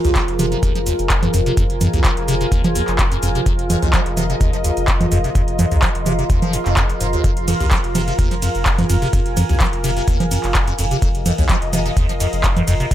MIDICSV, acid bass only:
0, 0, Header, 1, 2, 480
1, 0, Start_track
1, 0, Key_signature, -4, "minor"
1, 0, Tempo, 472441
1, 1598, Time_signature, 4, 2, 24, 8
1, 13151, End_track
2, 0, Start_track
2, 0, Title_t, "Acid bass"
2, 0, Program_c, 0, 38
2, 46, Note_on_c, 0, 39, 104
2, 108, Note_off_c, 0, 39, 0
2, 158, Note_on_c, 0, 53, 107
2, 229, Note_off_c, 0, 53, 0
2, 398, Note_on_c, 0, 48, 102
2, 469, Note_off_c, 0, 48, 0
2, 526, Note_on_c, 0, 48, 81
2, 588, Note_off_c, 0, 48, 0
2, 638, Note_on_c, 0, 39, 88
2, 744, Note_off_c, 0, 39, 0
2, 766, Note_on_c, 0, 53, 78
2, 803, Note_off_c, 0, 53, 0
2, 878, Note_on_c, 0, 39, 80
2, 949, Note_off_c, 0, 39, 0
2, 1246, Note_on_c, 0, 41, 76
2, 1308, Note_off_c, 0, 41, 0
2, 1359, Note_on_c, 0, 41, 103
2, 1429, Note_off_c, 0, 41, 0
2, 1487, Note_on_c, 0, 48, 79
2, 1548, Note_off_c, 0, 48, 0
2, 1599, Note_on_c, 0, 41, 87
2, 1669, Note_off_c, 0, 41, 0
2, 1838, Note_on_c, 0, 41, 95
2, 1909, Note_off_c, 0, 41, 0
2, 1966, Note_on_c, 0, 39, 100
2, 2028, Note_off_c, 0, 39, 0
2, 2078, Note_on_c, 0, 53, 114
2, 2149, Note_off_c, 0, 53, 0
2, 2318, Note_on_c, 0, 48, 107
2, 2389, Note_off_c, 0, 48, 0
2, 2446, Note_on_c, 0, 48, 77
2, 2508, Note_off_c, 0, 48, 0
2, 2558, Note_on_c, 0, 39, 87
2, 2664, Note_off_c, 0, 39, 0
2, 2686, Note_on_c, 0, 53, 77
2, 2723, Note_off_c, 0, 53, 0
2, 2798, Note_on_c, 0, 39, 76
2, 2868, Note_off_c, 0, 39, 0
2, 3166, Note_on_c, 0, 41, 74
2, 3228, Note_off_c, 0, 41, 0
2, 3278, Note_on_c, 0, 41, 97
2, 3349, Note_off_c, 0, 41, 0
2, 3406, Note_on_c, 0, 48, 78
2, 3468, Note_off_c, 0, 48, 0
2, 3518, Note_on_c, 0, 41, 84
2, 3589, Note_off_c, 0, 41, 0
2, 3758, Note_on_c, 0, 41, 103
2, 3828, Note_off_c, 0, 41, 0
2, 3886, Note_on_c, 0, 39, 99
2, 3948, Note_off_c, 0, 39, 0
2, 3998, Note_on_c, 0, 53, 110
2, 4069, Note_off_c, 0, 53, 0
2, 4238, Note_on_c, 0, 48, 107
2, 4309, Note_off_c, 0, 48, 0
2, 4366, Note_on_c, 0, 48, 82
2, 4428, Note_off_c, 0, 48, 0
2, 4478, Note_on_c, 0, 39, 84
2, 4584, Note_off_c, 0, 39, 0
2, 4606, Note_on_c, 0, 53, 77
2, 4643, Note_off_c, 0, 53, 0
2, 4718, Note_on_c, 0, 39, 78
2, 4789, Note_off_c, 0, 39, 0
2, 5086, Note_on_c, 0, 41, 74
2, 5148, Note_off_c, 0, 41, 0
2, 5198, Note_on_c, 0, 41, 101
2, 5268, Note_off_c, 0, 41, 0
2, 5326, Note_on_c, 0, 48, 76
2, 5388, Note_off_c, 0, 48, 0
2, 5438, Note_on_c, 0, 41, 85
2, 5508, Note_off_c, 0, 41, 0
2, 5678, Note_on_c, 0, 41, 105
2, 5749, Note_off_c, 0, 41, 0
2, 5806, Note_on_c, 0, 39, 102
2, 5868, Note_off_c, 0, 39, 0
2, 5918, Note_on_c, 0, 53, 115
2, 5988, Note_off_c, 0, 53, 0
2, 6158, Note_on_c, 0, 48, 105
2, 6228, Note_off_c, 0, 48, 0
2, 6286, Note_on_c, 0, 48, 80
2, 6348, Note_off_c, 0, 48, 0
2, 6398, Note_on_c, 0, 39, 90
2, 6504, Note_off_c, 0, 39, 0
2, 6526, Note_on_c, 0, 53, 80
2, 6638, Note_on_c, 0, 41, 111
2, 6653, Note_off_c, 0, 53, 0
2, 6680, Note_off_c, 0, 41, 0
2, 6766, Note_on_c, 0, 41, 81
2, 6859, Note_off_c, 0, 41, 0
2, 6878, Note_on_c, 0, 41, 84
2, 6948, Note_off_c, 0, 41, 0
2, 7118, Note_on_c, 0, 44, 70
2, 7188, Note_off_c, 0, 44, 0
2, 7246, Note_on_c, 0, 39, 77
2, 7339, Note_off_c, 0, 39, 0
2, 7358, Note_on_c, 0, 41, 84
2, 7429, Note_off_c, 0, 41, 0
2, 7598, Note_on_c, 0, 41, 104
2, 7669, Note_off_c, 0, 41, 0
2, 7726, Note_on_c, 0, 39, 100
2, 7788, Note_off_c, 0, 39, 0
2, 7838, Note_on_c, 0, 53, 111
2, 7908, Note_off_c, 0, 53, 0
2, 8078, Note_on_c, 0, 48, 106
2, 8148, Note_off_c, 0, 48, 0
2, 8206, Note_on_c, 0, 48, 77
2, 8267, Note_off_c, 0, 48, 0
2, 8317, Note_on_c, 0, 39, 90
2, 8423, Note_off_c, 0, 39, 0
2, 8445, Note_on_c, 0, 53, 77
2, 8483, Note_off_c, 0, 53, 0
2, 8557, Note_on_c, 0, 41, 79
2, 8628, Note_off_c, 0, 41, 0
2, 8925, Note_on_c, 0, 41, 74
2, 8987, Note_off_c, 0, 41, 0
2, 9038, Note_on_c, 0, 41, 96
2, 9108, Note_off_c, 0, 41, 0
2, 9165, Note_on_c, 0, 48, 77
2, 9228, Note_off_c, 0, 48, 0
2, 9278, Note_on_c, 0, 41, 85
2, 9348, Note_off_c, 0, 41, 0
2, 9518, Note_on_c, 0, 41, 99
2, 9588, Note_off_c, 0, 41, 0
2, 9646, Note_on_c, 0, 39, 100
2, 9708, Note_off_c, 0, 39, 0
2, 9758, Note_on_c, 0, 53, 110
2, 9828, Note_off_c, 0, 53, 0
2, 9998, Note_on_c, 0, 48, 106
2, 10068, Note_off_c, 0, 48, 0
2, 10125, Note_on_c, 0, 48, 81
2, 10187, Note_off_c, 0, 48, 0
2, 10237, Note_on_c, 0, 39, 89
2, 10343, Note_off_c, 0, 39, 0
2, 10366, Note_on_c, 0, 53, 80
2, 10403, Note_off_c, 0, 53, 0
2, 10478, Note_on_c, 0, 41, 82
2, 10548, Note_off_c, 0, 41, 0
2, 10846, Note_on_c, 0, 41, 78
2, 10908, Note_off_c, 0, 41, 0
2, 10958, Note_on_c, 0, 41, 99
2, 11029, Note_off_c, 0, 41, 0
2, 11086, Note_on_c, 0, 48, 76
2, 11148, Note_off_c, 0, 48, 0
2, 11198, Note_on_c, 0, 41, 83
2, 11269, Note_off_c, 0, 41, 0
2, 11438, Note_on_c, 0, 41, 95
2, 11509, Note_off_c, 0, 41, 0
2, 11566, Note_on_c, 0, 39, 104
2, 11628, Note_off_c, 0, 39, 0
2, 11678, Note_on_c, 0, 53, 112
2, 11748, Note_off_c, 0, 53, 0
2, 11918, Note_on_c, 0, 48, 104
2, 11988, Note_off_c, 0, 48, 0
2, 12046, Note_on_c, 0, 48, 80
2, 12108, Note_off_c, 0, 48, 0
2, 12158, Note_on_c, 0, 39, 83
2, 12264, Note_off_c, 0, 39, 0
2, 12286, Note_on_c, 0, 53, 81
2, 12323, Note_off_c, 0, 53, 0
2, 12398, Note_on_c, 0, 41, 81
2, 12468, Note_off_c, 0, 41, 0
2, 12766, Note_on_c, 0, 41, 76
2, 12828, Note_off_c, 0, 41, 0
2, 12878, Note_on_c, 0, 41, 99
2, 12949, Note_off_c, 0, 41, 0
2, 13006, Note_on_c, 0, 48, 77
2, 13068, Note_off_c, 0, 48, 0
2, 13118, Note_on_c, 0, 41, 80
2, 13151, Note_off_c, 0, 41, 0
2, 13151, End_track
0, 0, End_of_file